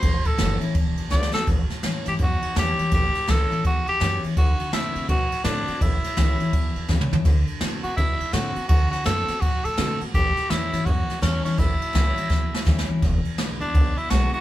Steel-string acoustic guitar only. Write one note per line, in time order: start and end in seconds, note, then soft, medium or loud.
0.03 0.73 A2 medium
0.38 0.60 E3 medium
0.38 0.61 G3 loud
0.38 0.61 C#4 loud
0.38 0.60 E4 loud
0.61 0.75 C#4 medium
0.61 0.74 E4 medium
0.75 1.45 E2 medium
1.10 1.33 D3 loud
1.10 1.33 G#3 medium
1.10 1.33 B3 medium
1.10 1.32 E4 loud
1.33 1.47 B3 soft
1.33 1.46 E4 medium
1.47 2.17 A2 medium
1.83 2.05 E3 medium
1.83 2.06 G3 loud
1.83 2.06 C#4 loud
1.83 2.04 E4 loud
2.05 2.20 C#4 soft
2.05 2.19 E4 medium
2.19 2.89 E2 loud
2.55 2.77 E3 medium
2.55 2.78 G3 medium
2.55 2.78 C#4 medium
2.55 2.77 E4 medium
2.78 2.92 C#4 medium
2.78 2.91 E4 medium
2.92 3.62 A2 medium
3.27 3.50 E3 medium
3.27 3.50 G3 medium
3.27 3.50 C#4 medium
3.27 3.49 E4 loud
3.51 3.65 C#4 medium
3.51 3.64 E4 medium
3.65 4.34 E2 medium
4.00 4.22 E3 loud
4.00 4.22 G3 medium
4.00 4.23 C#4 loud
4.00 4.22 E4 loud
4.23 4.37 C#4 soft
4.23 4.36 E4 medium
4.37 4.71 D3 medium
4.72 5.07 D3 medium
4.72 5.08 A3 medium
4.72 5.08 C4 loud
4.72 5.08 F#4 medium
5.09 5.79 A2 medium
5.45 5.67 D3 medium
5.45 5.67 A3 loud
5.45 5.67 C4 loud
5.45 5.67 F#4 loud
5.68 5.82 C4 soft
5.68 5.81 F#4 medium
5.82 6.51 A2 medium
6.17 6.39 E3 loud
6.17 6.39 G3 medium
6.17 6.39 C#4 loud
6.17 6.37 E4 loud
6.39 6.53 C#4 medium
6.39 6.52 E4 medium
6.53 7.23 E2 loud
6.88 7.11 E3 medium
6.88 7.11 G3 loud
6.88 7.12 C#4 loud
6.88 7.10 E4 loud
7.11 7.26 C#4 soft
7.11 7.25 E4 medium
7.26 7.60 D3 medium
7.61 7.83 D3 loud
7.61 7.84 A3 medium
7.61 7.84 C4 medium
7.61 7.82 F#4 loud
7.84 7.98 C4 soft
7.84 7.97 F#4 medium
7.98 8.67 A2 medium
8.33 8.55 D3 medium
8.33 8.56 A3 medium
8.33 8.56 C4 loud
8.33 8.54 F#4 loud
8.56 8.70 C4 soft
8.56 8.69 F#4 medium
8.69 9.03 D3 medium
9.04 9.27 D3 medium
9.04 9.27 A3 medium
9.04 9.28 C4 medium
9.04 9.26 F#4 loud
9.28 9.42 C4 medium
9.28 9.41 F#4 medium
9.42 10.12 A2 medium
9.77 9.99 D3 loud
9.77 10.00 A3 loud
9.77 10.00 C4 medium
9.77 9.99 F#4 loud
10.00 10.15 C4 soft
10.00 10.14 F#4 medium
10.15 10.84 A2 medium
10.50 10.72 E3 medium
10.50 10.73 G3 medium
10.50 10.73 C#4 medium
10.50 10.72 E4 loud
10.73 10.87 C#4 medium
10.73 10.86 E4 medium
10.87 11.56 E2 medium
11.22 11.44 E3 loud
11.22 11.44 G3 medium
11.22 11.45 C#4 loud
11.22 11.44 E4 medium
11.45 11.59 C#4 soft
11.45 11.58 E4 medium
11.58 12.28 A2 medium
11.93 12.15 E3 medium
11.93 12.16 G3 medium
11.93 12.16 C#4 medium
11.93 12.15 E4 loud
12.16 12.31 C#4 medium
12.16 12.29 E4 medium
12.30 13.00 E2 loud
12.65 12.88 E3 loud
12.65 12.88 G3 loud
12.65 12.88 C#4 loud
12.65 12.88 E4 loud
12.89 13.03 C#4 soft
12.89 13.02 E4 medium
13.02 13.72 E2 medium
13.38 13.60 D3 medium
13.38 13.61 G#3 medium
13.38 13.61 B3 loud
13.38 13.59 E4 loud
13.61 13.75 B3 medium
13.61 13.74 E4 medium
13.75 14.41 B2 loud
14.10 14.32 D3 medium
14.10 14.32 G#3 medium
14.10 14.33 B3 loud
14.10 14.32 E4 loud
14.33 14.41 B3 medium
14.33 14.41 E4 medium